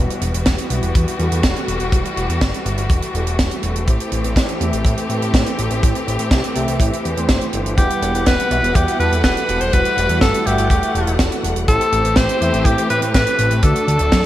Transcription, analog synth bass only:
0.22 0.32 E1 medium
0.34 0.44 E1 medium
0.47 0.57 E1 loud
0.70 0.81 B1 medium
0.83 0.93 E1 medium
0.95 1.06 E2 loud
1.19 1.30 E2 medium
1.31 1.42 E2 medium
1.43 1.54 E1 loud
1.68 1.79 E1 medium
1.80 1.91 E1 medium
1.92 2.03 E1 loud
2.17 2.27 E1 medium
2.29 2.40 E2 medium
2.41 2.52 G1 loud
2.66 2.76 G1 loud
2.78 2.88 G1 medium
2.90 3.00 E1 loud
3.14 3.25 E1 medium
3.27 3.37 E1 medium
3.39 3.49 E1 loud
3.63 3.74 E1 medium
3.75 3.86 E1 medium
3.88 3.98 A1 loud
4.12 4.23 A1 loud
4.24 4.35 A1 medium
4.36 4.47 A1 medium
4.61 4.71 E2 medium
4.73 4.84 A1 medium
4.85 4.95 A2 loud
5.09 5.20 A2 medium
5.22 5.32 A2 medium
5.34 5.44 A1 loud
5.58 5.69 A1 medium
5.70 5.81 A1 medium
5.83 5.93 A1 loud
6.07 6.18 A1 medium
6.19 6.30 A2 medium
6.31 6.42 C2 loud
6.56 6.66 C2 medium
6.68 6.79 C2 medium
6.80 6.91 A1 loud
7.05 7.15 E2 medium
7.17 7.27 E2 medium
7.29 7.40 G1 loud
7.53 7.64 G1 medium
7.66 7.76 G1 medium
7.78 7.88 E1 medium
8.02 8.13 E1 medium
8.14 8.25 E1 medium
8.27 8.37 E1 loud
8.51 8.62 B1 medium
8.63 8.74 E1 medium
8.75 8.86 E2 loud
8.99 9.10 E2 medium
9.12 9.23 E2 medium
9.24 9.35 E1 loud
9.48 9.59 E1 medium
9.61 9.71 E1 medium
9.74 9.84 E1 loud
9.97 10.08 E1 medium
10.09 10.20 E2 medium
10.21 10.32 G1 loud
10.46 10.57 G1 medium
10.58 10.69 G1 medium
10.70 10.81 E1 loud
10.95 11.05 E1 medium
11.07 11.18 E1 medium
11.19 11.30 E1 loud
11.44 11.54 E1 loud
11.56 11.66 E1 medium
11.68 11.79 A1 medium
11.92 12.03 A1 loud
12.05 12.15 A1 medium
12.17 12.27 A1 loud
12.41 12.52 E2 medium
12.53 12.64 A1 medium
12.65 12.76 A2 loud
12.90 13.01 A2 medium
13.02 13.13 A2 medium
13.14 13.25 A1 loud
13.39 13.49 A1 medium
13.51 13.62 A1 medium
13.63 13.74 D2 loud
13.87 13.98 D2 medium
14.00 14.10 D1 medium
14.12 14.23 F#2 loud

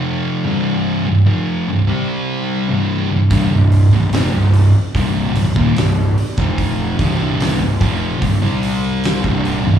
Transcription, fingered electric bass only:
3.31 3.50 C1 medium
3.51 3.90 C1 medium
3.93 4.12 C1 medium
4.13 4.32 F1 medium
4.34 4.72 C1 medium
4.95 5.33 C1 loud
5.35 5.55 C1 medium
5.56 5.75 D#1 medium
5.76 6.15 C1 medium
6.37 6.95 F1 medium
6.99 7.57 C1 medium
7.60 7.80 C1 medium
7.81 8.19 F1 medium
8.22 8.41 C1 medium
8.42 9.21 C2 medium
9.24 9.63 C1 medium
9.65 9.79 C1 medium

